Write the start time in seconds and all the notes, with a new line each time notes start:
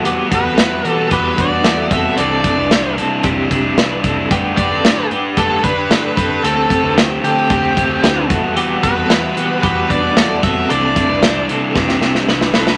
Already playing: E2
0.03 E3 G3 B3 F#4 G4, closed hi-hat
0.30 G3 B3 F#4, kick, closed hi-hat
0.34 B4
0.45 E2 C4 A4
0.57 E2 E3 G3 B3 E4 F#4 B4, snare, closed hi-hat
0.82 E3 G3 B3 F#4 G4, closed hi-hat
0.89 A4
1.09 E2 E3 G3 B3 F#4 G4, kick, closed hi-hat
1.13 B4
1.36 E2 G3 B3 D4 F#4 B4, kick, closed hi-hat
1.40 D5
1.63 E2 E3 G3 B3 E4 F#4 A4, snare, closed hi-hat
1.90 E2 G3 B3 C4 F#4 A4 E5, kick, closed hi-hat
2.17 C2 C3 E3 G3 C4 D4 E4 A4 D5, closed hi-hat
2.44 G3 D4 E4, kick, closed hi-hat
2.58 C2 D4 B4
2.70 C2 E3 G3 D4 E4 C5, snare, closed hi-hat
2.96 C3 G3 C4 D4 E4 A4, closed hi-hat
3.23 C2 C3 E3 G3 C4 D4 E4 G4, kick, closed hi-hat
3.51 C2 G3 D4 E4, kick, closed hi-hat
3.77 C2 E3 G3 D4 E4 B4, snare, closed hi-hat
4.04 C2 G3 C4 D4 E4 A4, kick, closed hi-hat
4.31 G1 G3 A3 B3 D4 G4 B4, kick, closed hi-hat
4.57 D4 G4 B4 D5, kick, closed hi-hat
4.70 G1 C4 A4
4.83 G1 A3 D4 G4 B4, snare, closed hi-hat
4.87 B4
5.10 G2 B3 D4 G4 B4, closed hi-hat
5.37 G1 G3 A3 B3 D4 G4 A4 B4, kick, closed hi-hat
5.63 G1 D4 G4 B4, kick, closed hi-hat
5.89 G1 A3 D4 G4 A4, snare, closed hi-hat
5.94 B4
6.16 G1 C4 D4 G4 A4 B4, kick, closed hi-hat
6.43 D2 D3 A3 C4 G4 A4, closed hi-hat
6.70 A3 C4 G4, kick, closed hi-hat
6.83 D2 D4 B4
6.96 D2 D3 A3 C4 G4 C5, snare, closed hi-hat
7.22 D3 A3 C4 G4 A4, closed hi-hat
7.49 D2 D3 A3 C4 G4, kick, closed hi-hat
7.75 D2 A3 C4 G4, kick, closed hi-hat
8.03 D2 D3 A3 C4 D4 G4 B4, snare, closed hi-hat
8.28 E2 G3 B3 E4 F#4 A4, kick, closed hi-hat
8.55 E3 G3 B3 F#4 G4, closed hi-hat
8.83 G3 B3 F#4 B4, kick, closed hi-hat
8.97 E2 C4 A4
9.10 E2 E3 G3 B3 E4 F#4 B4, snare, closed hi-hat
9.36 E3 G3 B3 F#4 G4, closed hi-hat
9.63 E2 E3 G3 B3 F#4 G4 B4, kick, closed hi-hat
9.89 E2 G3 B3 D4 F#4 B4 D5, kick, closed hi-hat
10.16 E2 E3 G3 B3 E4 F#4 A4, snare, closed hi-hat
10.42 E2 G3 B3 C4 F#4 A4 E5, kick, closed hi-hat
10.69 C2 C3 E3 G3 C4 D4 E4 A4 D5, closed hi-hat
10.96 G3 D4 E4, kick, closed hi-hat
11.09 C2 D4 B4
11.22 C2 E3 G3 D4 E4 C5, snare, closed hi-hat
11.49 C3 G3 C4 D4 E4 A4, closed hi-hat
11.75 C2 C3 E3 G3 C4 D4 E4 G4, kick, snare
11.89 snare
12.01 C2 G3 D4 E4, snare
12.15 snare
12.28 C2 E3 G3 D4 E4 B4, snare
12.41 snare
12.54 C2 G3 C4 D4 E4 A4 B4, snare
12.67 snare